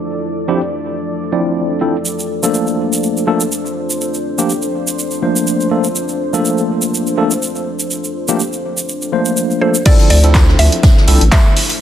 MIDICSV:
0, 0, Header, 1, 6, 480
1, 0, Start_track
1, 0, Tempo, 487805
1, 101, Time_signature, 4, 2, 24, 8
1, 11621, End_track
2, 0, Start_track
2, 0, Title_t, "Synth pluck"
2, 0, Program_c, 0, 84
2, 9460, Note_on_c, 0, 72, 81
2, 9684, Note_off_c, 0, 72, 0
2, 9700, Note_on_c, 0, 74, 105
2, 9924, Note_off_c, 0, 74, 0
2, 9942, Note_on_c, 0, 74, 106
2, 10421, Note_on_c, 0, 76, 113
2, 10436, Note_off_c, 0, 74, 0
2, 11130, Note_off_c, 0, 76, 0
2, 11142, Note_on_c, 0, 76, 103
2, 11588, Note_off_c, 0, 76, 0
2, 11621, End_track
3, 0, Start_track
3, 0, Title_t, "Ambient pad"
3, 0, Program_c, 1, 92
3, 0, Note_on_c, 1, 53, 69
3, 0, Note_on_c, 1, 62, 74
3, 0, Note_on_c, 1, 64, 70
3, 0, Note_on_c, 1, 69, 68
3, 0, Note_on_c, 1, 74, 85
3, 1981, Note_off_c, 1, 62, 0
3, 1981, Note_off_c, 1, 64, 0
3, 1983, Note_off_c, 1, 74, 0
3, 2020, Note_on_c, 1, 62, 69
3, 2020, Note_on_c, 1, 72, 84
3, 9661, Note_off_c, 1, 53, 0
3, 9661, Note_off_c, 1, 62, 0
3, 9661, Note_off_c, 1, 69, 0
3, 9661, Note_off_c, 1, 72, 0
3, 9698, Note_on_c, 1, 57, 80
3, 9698, Note_on_c, 1, 62, 76
3, 9699, Note_on_c, 1, 53, 74
3, 9699, Note_on_c, 1, 64, 74
3, 9699, Note_on_c, 1, 72, 91
3, 11621, Note_off_c, 1, 53, 0
3, 11621, Note_off_c, 1, 57, 0
3, 11621, Note_off_c, 1, 62, 0
3, 11621, Note_off_c, 1, 64, 0
3, 11621, Note_off_c, 1, 72, 0
3, 11621, End_track
4, 0, Start_track
4, 0, Title_t, "Tine electric piano"
4, 0, Program_c, 2, 4
4, 472, Note_on_c, 2, 53, 82
4, 473, Note_on_c, 2, 60, 76
4, 474, Note_on_c, 2, 62, 76
4, 477, Note_on_c, 2, 64, 76
4, 477, Note_on_c, 2, 67, 92
4, 593, Note_off_c, 2, 53, 0
4, 594, Note_off_c, 2, 60, 0
4, 595, Note_off_c, 2, 62, 0
4, 596, Note_off_c, 2, 64, 0
4, 596, Note_off_c, 2, 67, 0
4, 1298, Note_on_c, 2, 53, 72
4, 1300, Note_on_c, 2, 60, 65
4, 1302, Note_on_c, 2, 62, 65
4, 1302, Note_on_c, 2, 64, 67
4, 1305, Note_on_c, 2, 74, 79
4, 1754, Note_off_c, 2, 53, 0
4, 1755, Note_off_c, 2, 60, 0
4, 1756, Note_off_c, 2, 62, 0
4, 1756, Note_off_c, 2, 64, 0
4, 1757, Note_off_c, 2, 74, 0
4, 1778, Note_on_c, 2, 53, 68
4, 1780, Note_on_c, 2, 60, 62
4, 1781, Note_on_c, 2, 62, 63
4, 1783, Note_on_c, 2, 64, 63
4, 1785, Note_on_c, 2, 69, 73
4, 1924, Note_off_c, 2, 53, 0
4, 1925, Note_off_c, 2, 60, 0
4, 1925, Note_off_c, 2, 62, 0
4, 1926, Note_off_c, 2, 64, 0
4, 1927, Note_off_c, 2, 69, 0
4, 2388, Note_on_c, 2, 53, 83
4, 2391, Note_on_c, 2, 57, 74
4, 2394, Note_on_c, 2, 58, 74
4, 2397, Note_on_c, 2, 62, 74
4, 2400, Note_on_c, 2, 69, 89
4, 3192, Note_off_c, 2, 53, 0
4, 3194, Note_off_c, 2, 57, 0
4, 3195, Note_off_c, 2, 58, 0
4, 3197, Note_off_c, 2, 62, 0
4, 3198, Note_off_c, 2, 69, 0
4, 3217, Note_on_c, 2, 53, 76
4, 3219, Note_on_c, 2, 57, 72
4, 3221, Note_on_c, 2, 58, 73
4, 3222, Note_on_c, 2, 62, 72
4, 3223, Note_on_c, 2, 69, 88
4, 3363, Note_off_c, 2, 53, 0
4, 3364, Note_off_c, 2, 57, 0
4, 3365, Note_off_c, 2, 58, 0
4, 3365, Note_off_c, 2, 62, 0
4, 3366, Note_off_c, 2, 69, 0
4, 4310, Note_on_c, 2, 53, 82
4, 4312, Note_on_c, 2, 57, 76
4, 4313, Note_on_c, 2, 58, 76
4, 4315, Note_on_c, 2, 62, 77
4, 4316, Note_on_c, 2, 67, 91
4, 4433, Note_off_c, 2, 53, 0
4, 4434, Note_off_c, 2, 57, 0
4, 4434, Note_off_c, 2, 58, 0
4, 4435, Note_off_c, 2, 62, 0
4, 4435, Note_off_c, 2, 67, 0
4, 5138, Note_on_c, 2, 53, 74
4, 5139, Note_on_c, 2, 57, 68
4, 5141, Note_on_c, 2, 58, 68
4, 5142, Note_on_c, 2, 62, 68
4, 5143, Note_on_c, 2, 72, 81
4, 5594, Note_off_c, 2, 53, 0
4, 5594, Note_off_c, 2, 57, 0
4, 5595, Note_off_c, 2, 58, 0
4, 5596, Note_off_c, 2, 62, 0
4, 5596, Note_off_c, 2, 72, 0
4, 5618, Note_on_c, 2, 53, 70
4, 5619, Note_on_c, 2, 57, 65
4, 5621, Note_on_c, 2, 58, 64
4, 5622, Note_on_c, 2, 62, 64
4, 5624, Note_on_c, 2, 69, 76
4, 5763, Note_off_c, 2, 53, 0
4, 5764, Note_off_c, 2, 57, 0
4, 5765, Note_off_c, 2, 58, 0
4, 5765, Note_off_c, 2, 62, 0
4, 5766, Note_off_c, 2, 69, 0
4, 6228, Note_on_c, 2, 53, 83
4, 6230, Note_on_c, 2, 57, 77
4, 6234, Note_on_c, 2, 58, 77
4, 6236, Note_on_c, 2, 62, 77
4, 6240, Note_on_c, 2, 69, 92
4, 7032, Note_off_c, 2, 53, 0
4, 7033, Note_off_c, 2, 57, 0
4, 7035, Note_off_c, 2, 58, 0
4, 7036, Note_off_c, 2, 62, 0
4, 7038, Note_off_c, 2, 69, 0
4, 7058, Note_on_c, 2, 53, 80
4, 7059, Note_on_c, 2, 57, 74
4, 7060, Note_on_c, 2, 58, 72
4, 7062, Note_on_c, 2, 62, 73
4, 7063, Note_on_c, 2, 69, 86
4, 7203, Note_off_c, 2, 53, 0
4, 7204, Note_off_c, 2, 57, 0
4, 7205, Note_off_c, 2, 58, 0
4, 7205, Note_off_c, 2, 62, 0
4, 7206, Note_off_c, 2, 69, 0
4, 8150, Note_on_c, 2, 53, 87
4, 8151, Note_on_c, 2, 57, 78
4, 8153, Note_on_c, 2, 58, 80
4, 8154, Note_on_c, 2, 62, 79
4, 8156, Note_on_c, 2, 67, 95
4, 8272, Note_off_c, 2, 53, 0
4, 8273, Note_off_c, 2, 57, 0
4, 8274, Note_off_c, 2, 58, 0
4, 8275, Note_off_c, 2, 62, 0
4, 8275, Note_off_c, 2, 67, 0
4, 8978, Note_on_c, 2, 53, 77
4, 8980, Note_on_c, 2, 57, 69
4, 8981, Note_on_c, 2, 58, 70
4, 8983, Note_on_c, 2, 62, 70
4, 8984, Note_on_c, 2, 72, 83
4, 9434, Note_off_c, 2, 53, 0
4, 9435, Note_off_c, 2, 57, 0
4, 9435, Note_off_c, 2, 58, 0
4, 9436, Note_off_c, 2, 62, 0
4, 9437, Note_off_c, 2, 72, 0
4, 9457, Note_on_c, 2, 53, 71
4, 9459, Note_on_c, 2, 57, 65
4, 9460, Note_on_c, 2, 58, 66
4, 9462, Note_on_c, 2, 62, 64
4, 9464, Note_on_c, 2, 69, 77
4, 9603, Note_off_c, 2, 53, 0
4, 9604, Note_off_c, 2, 57, 0
4, 9605, Note_off_c, 2, 58, 0
4, 9606, Note_off_c, 2, 62, 0
4, 9606, Note_off_c, 2, 69, 0
4, 9697, Note_on_c, 2, 53, 98
4, 9699, Note_on_c, 2, 60, 87
4, 9700, Note_on_c, 2, 62, 89
4, 9702, Note_on_c, 2, 64, 90
4, 9703, Note_on_c, 2, 69, 109
4, 10019, Note_off_c, 2, 53, 0
4, 10020, Note_off_c, 2, 60, 0
4, 10020, Note_off_c, 2, 62, 0
4, 10021, Note_off_c, 2, 64, 0
4, 10022, Note_off_c, 2, 69, 0
4, 10067, Note_on_c, 2, 53, 91
4, 10070, Note_on_c, 2, 60, 84
4, 10073, Note_on_c, 2, 62, 84
4, 10076, Note_on_c, 2, 64, 84
4, 10079, Note_on_c, 2, 69, 98
4, 10872, Note_off_c, 2, 53, 0
4, 10873, Note_off_c, 2, 60, 0
4, 10875, Note_off_c, 2, 62, 0
4, 10876, Note_off_c, 2, 64, 0
4, 10878, Note_off_c, 2, 69, 0
4, 10897, Note_on_c, 2, 53, 86
4, 10898, Note_on_c, 2, 60, 78
4, 10900, Note_on_c, 2, 62, 78
4, 10901, Note_on_c, 2, 64, 80
4, 10903, Note_on_c, 2, 69, 93
4, 11043, Note_off_c, 2, 53, 0
4, 11044, Note_off_c, 2, 60, 0
4, 11044, Note_off_c, 2, 62, 0
4, 11045, Note_off_c, 2, 64, 0
4, 11046, Note_off_c, 2, 69, 0
4, 11621, End_track
5, 0, Start_track
5, 0, Title_t, "Analog synth bass"
5, 0, Program_c, 3, 38
5, 9940, Note_on_c, 3, 38, 97
5, 10373, Note_off_c, 3, 38, 0
5, 10420, Note_on_c, 3, 38, 100
5, 10516, Note_off_c, 3, 38, 0
5, 10900, Note_on_c, 3, 36, 101
5, 10996, Note_off_c, 3, 36, 0
5, 11033, Note_on_c, 3, 33, 87
5, 11111, Note_off_c, 3, 33, 0
5, 11621, End_track
6, 0, Start_track
6, 0, Title_t, "Drums"
6, 2019, Note_on_c, 9, 82, 60
6, 2117, Note_off_c, 9, 82, 0
6, 2158, Note_on_c, 9, 82, 38
6, 2256, Note_off_c, 9, 82, 0
6, 2393, Note_on_c, 9, 82, 75
6, 2491, Note_off_c, 9, 82, 0
6, 2500, Note_on_c, 9, 82, 59
6, 2598, Note_off_c, 9, 82, 0
6, 2625, Note_on_c, 9, 82, 34
6, 2724, Note_off_c, 9, 82, 0
6, 2880, Note_on_c, 9, 82, 73
6, 2978, Note_off_c, 9, 82, 0
6, 2984, Note_on_c, 9, 82, 59
6, 3082, Note_off_c, 9, 82, 0
6, 3119, Note_on_c, 9, 82, 35
6, 3217, Note_off_c, 9, 82, 0
6, 3348, Note_on_c, 9, 82, 71
6, 3446, Note_off_c, 9, 82, 0
6, 3461, Note_on_c, 9, 82, 60
6, 3559, Note_off_c, 9, 82, 0
6, 3600, Note_on_c, 9, 82, 32
6, 3698, Note_off_c, 9, 82, 0
6, 3836, Note_on_c, 9, 82, 69
6, 3934, Note_off_c, 9, 82, 0
6, 3946, Note_on_c, 9, 82, 62
6, 4044, Note_off_c, 9, 82, 0
6, 4074, Note_on_c, 9, 82, 38
6, 4172, Note_off_c, 9, 82, 0
6, 4315, Note_on_c, 9, 82, 70
6, 4413, Note_off_c, 9, 82, 0
6, 4422, Note_on_c, 9, 82, 63
6, 4520, Note_off_c, 9, 82, 0
6, 4545, Note_on_c, 9, 82, 35
6, 4643, Note_off_c, 9, 82, 0
6, 4794, Note_on_c, 9, 82, 73
6, 4893, Note_off_c, 9, 82, 0
6, 4907, Note_on_c, 9, 82, 58
6, 5006, Note_off_c, 9, 82, 0
6, 5026, Note_on_c, 9, 82, 34
6, 5125, Note_off_c, 9, 82, 0
6, 5272, Note_on_c, 9, 82, 71
6, 5371, Note_off_c, 9, 82, 0
6, 5382, Note_on_c, 9, 82, 58
6, 5480, Note_off_c, 9, 82, 0
6, 5513, Note_on_c, 9, 82, 33
6, 5611, Note_off_c, 9, 82, 0
6, 5745, Note_on_c, 9, 82, 66
6, 5844, Note_off_c, 9, 82, 0
6, 5859, Note_on_c, 9, 82, 61
6, 5957, Note_off_c, 9, 82, 0
6, 5987, Note_on_c, 9, 82, 33
6, 6085, Note_off_c, 9, 82, 0
6, 6236, Note_on_c, 9, 82, 65
6, 6335, Note_off_c, 9, 82, 0
6, 6346, Note_on_c, 9, 82, 60
6, 6444, Note_off_c, 9, 82, 0
6, 6471, Note_on_c, 9, 82, 31
6, 6569, Note_off_c, 9, 82, 0
6, 6707, Note_on_c, 9, 82, 66
6, 6805, Note_off_c, 9, 82, 0
6, 6831, Note_on_c, 9, 82, 61
6, 6930, Note_off_c, 9, 82, 0
6, 6953, Note_on_c, 9, 82, 35
6, 7051, Note_off_c, 9, 82, 0
6, 7190, Note_on_c, 9, 82, 65
6, 7288, Note_off_c, 9, 82, 0
6, 7303, Note_on_c, 9, 82, 54
6, 7401, Note_off_c, 9, 82, 0
6, 7432, Note_on_c, 9, 82, 32
6, 7530, Note_off_c, 9, 82, 0
6, 7669, Note_on_c, 9, 82, 72
6, 7767, Note_off_c, 9, 82, 0
6, 7779, Note_on_c, 9, 82, 60
6, 7877, Note_off_c, 9, 82, 0
6, 7912, Note_on_c, 9, 82, 39
6, 8010, Note_off_c, 9, 82, 0
6, 8148, Note_on_c, 9, 82, 75
6, 8246, Note_off_c, 9, 82, 0
6, 8259, Note_on_c, 9, 82, 63
6, 8358, Note_off_c, 9, 82, 0
6, 8392, Note_on_c, 9, 82, 35
6, 8490, Note_off_c, 9, 82, 0
6, 8631, Note_on_c, 9, 82, 76
6, 8730, Note_off_c, 9, 82, 0
6, 8745, Note_on_c, 9, 82, 65
6, 8843, Note_off_c, 9, 82, 0
6, 8873, Note_on_c, 9, 82, 34
6, 8971, Note_off_c, 9, 82, 0
6, 9104, Note_on_c, 9, 82, 72
6, 9203, Note_off_c, 9, 82, 0
6, 9216, Note_on_c, 9, 82, 60
6, 9315, Note_off_c, 9, 82, 0
6, 9353, Note_on_c, 9, 82, 35
6, 9452, Note_off_c, 9, 82, 0
6, 9588, Note_on_c, 9, 82, 71
6, 9686, Note_off_c, 9, 82, 0
6, 9697, Note_on_c, 9, 54, 85
6, 9700, Note_on_c, 9, 36, 119
6, 9700, Note_on_c, 9, 42, 69
6, 9700, Note_on_c, 9, 49, 102
6, 9796, Note_off_c, 9, 54, 0
6, 9798, Note_off_c, 9, 42, 0
6, 9798, Note_off_c, 9, 49, 0
6, 9799, Note_off_c, 9, 36, 0
6, 9832, Note_on_c, 9, 42, 47
6, 9930, Note_off_c, 9, 42, 0
6, 9940, Note_on_c, 9, 46, 105
6, 9942, Note_on_c, 9, 54, 65
6, 10038, Note_off_c, 9, 46, 0
6, 10041, Note_off_c, 9, 54, 0
6, 10073, Note_on_c, 9, 42, 56
6, 10171, Note_off_c, 9, 42, 0
6, 10179, Note_on_c, 9, 38, 105
6, 10179, Note_on_c, 9, 54, 80
6, 10180, Note_on_c, 9, 42, 68
6, 10181, Note_on_c, 9, 36, 116
6, 10181, Note_on_c, 9, 39, 123
6, 10277, Note_off_c, 9, 38, 0
6, 10277, Note_off_c, 9, 54, 0
6, 10278, Note_off_c, 9, 42, 0
6, 10279, Note_off_c, 9, 36, 0
6, 10280, Note_off_c, 9, 39, 0
6, 10308, Note_on_c, 9, 38, 51
6, 10407, Note_off_c, 9, 38, 0
6, 10420, Note_on_c, 9, 46, 103
6, 10422, Note_on_c, 9, 54, 54
6, 10518, Note_off_c, 9, 46, 0
6, 10521, Note_off_c, 9, 54, 0
6, 10553, Note_on_c, 9, 42, 57
6, 10651, Note_off_c, 9, 42, 0
6, 10655, Note_on_c, 9, 38, 97
6, 10660, Note_on_c, 9, 42, 70
6, 10660, Note_on_c, 9, 54, 84
6, 10661, Note_on_c, 9, 36, 121
6, 10753, Note_off_c, 9, 38, 0
6, 10758, Note_off_c, 9, 42, 0
6, 10758, Note_off_c, 9, 54, 0
6, 10759, Note_off_c, 9, 36, 0
6, 10795, Note_on_c, 9, 38, 49
6, 10893, Note_off_c, 9, 38, 0
6, 10898, Note_on_c, 9, 54, 56
6, 10900, Note_on_c, 9, 46, 105
6, 10996, Note_off_c, 9, 54, 0
6, 10998, Note_off_c, 9, 46, 0
6, 11033, Note_on_c, 9, 42, 54
6, 11132, Note_off_c, 9, 42, 0
6, 11139, Note_on_c, 9, 54, 93
6, 11140, Note_on_c, 9, 42, 68
6, 11141, Note_on_c, 9, 36, 125
6, 11141, Note_on_c, 9, 38, 112
6, 11141, Note_on_c, 9, 39, 121
6, 11237, Note_off_c, 9, 54, 0
6, 11238, Note_off_c, 9, 42, 0
6, 11239, Note_off_c, 9, 36, 0
6, 11239, Note_off_c, 9, 38, 0
6, 11240, Note_off_c, 9, 39, 0
6, 11380, Note_on_c, 9, 46, 101
6, 11381, Note_on_c, 9, 54, 71
6, 11479, Note_off_c, 9, 46, 0
6, 11479, Note_off_c, 9, 54, 0
6, 11505, Note_on_c, 9, 42, 42
6, 11513, Note_on_c, 9, 46, 61
6, 11603, Note_off_c, 9, 42, 0
6, 11612, Note_off_c, 9, 46, 0
6, 11621, End_track
0, 0, End_of_file